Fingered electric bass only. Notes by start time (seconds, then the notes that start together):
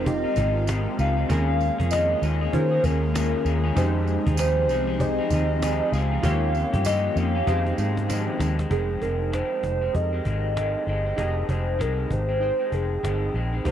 Already playing: F1
0.36 G#1
0.99 C#2
1.29 D#2
1.80 F2
2.22 D#2
2.53 D#3
2.84 D#2
3.45 D#2
3.77 F2
4.27 D#2
4.69 C2
5.30 D#2
5.92 C#2
6.23 D#2
6.74 G2
7.16 F2
7.47 F2
7.78 G#2
8.40 D#2
8.71 F1
9.01 F1
9.63 F1
9.95 F2
10.25 G#1
10.87 G1
11.18 F1
11.49 F1
11.80 C2
12.10 G#1
12.72 F1
13.03 G1
13.34 A#1
13.65 C2